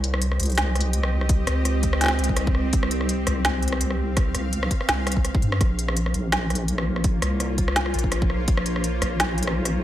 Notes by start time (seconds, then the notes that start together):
Already playing: C2 A#3 C4 F4 G4 C5 D#5
0.04 closed hi-hat
0.14 cross-stick
0.22 closed hi-hat
0.32 cross-stick
0.40 C2, closed hi-hat
0.43 closed hi-hat
0.46 closed hi-hat
0.50 closed hi-hat
0.52 closed hi-hat
0.55 cross-stick, snare, closed hi-hat
0.58 closed hi-hat
0.75 cross-stick, closed hi-hat
0.81 closed hi-hat
0.93 closed hi-hat
1.03 cross-stick
1.21 cross-stick
1.29 kick, closed hi-hat
1.47 C#2, cross-stick, closed hi-hat
1.65 cross-stick, closed hi-hat
1.83 kick, closed hi-hat
1.93 cross-stick
2.01 snare, closed hi-hat
2.04 snare
2.06 snare
2.08 cross-stick, snare
2.19 C2, closed hi-hat
2.24 closed hi-hat
2.29 kick
2.37 cross-stick, closed hi-hat
2.47 kick
2.55 cross-stick
2.73 C2, kick, closed hi-hat
2.83 cross-stick
2.91 closed hi-hat
3.01 cross-stick
3.09 closed hi-hat
3.27 C2, cross-stick, closed hi-hat
3.45 F5, cross-stick, snare, closed hi-hat
3.63 closed hi-hat
3.68 closed hi-hat
3.72 cross-stick
3.81 closed hi-hat
3.90 cross-stick
4.17 kick, cross-stick, closed hi-hat
4.35 C2, cross-stick, closed hi-hat
4.53 closed hi-hat
4.63 cross-stick
4.71 kick, closed hi-hat
4.81 cross-stick
4.89 C2, snare, closed hi-hat
5.07 cross-stick, closed hi-hat
5.12 closed hi-hat
5.17 kick
5.25 cross-stick, closed hi-hat
5.35 kick
5.42 G2, closed hi-hat
5.52 cross-stick
5.61 A#1 A#3, kick, cross-stick, closed hi-hat
5.79 F4, closed hi-hat
5.88 C5, cross-stick
5.97 closed hi-hat
6.04 C#5, cross-stick
6.14 A#1, closed hi-hat
6.32 cross-stick, snare, closed hi-hat
6.50 cross-stick, closed hi-hat
6.55 closed hi-hat
6.68 closed hi-hat
6.78 cross-stick
6.96 cross-stick
7.04 kick, closed hi-hat
7.22 C2, cross-stick, closed hi-hat
7.40 cross-stick, closed hi-hat
7.58 kick, closed hi-hat
7.68 cross-stick
7.76 snare, closed hi-hat
7.86 cross-stick
7.94 A#1, closed hi-hat
7.99 closed hi-hat
8.04 kick
8.12 cross-stick, closed hi-hat
8.22 kick
8.30 cross-stick
8.48 A#1, kick, closed hi-hat
8.57 cross-stick
8.66 closed hi-hat
8.76 cross-stick
8.84 closed hi-hat
9.02 A#1, cross-stick, closed hi-hat
9.20 cross-stick, snare, closed hi-hat
9.38 closed hi-hat
9.43 closed hi-hat
9.47 cross-stick
9.65 cross-stick, closed hi-hat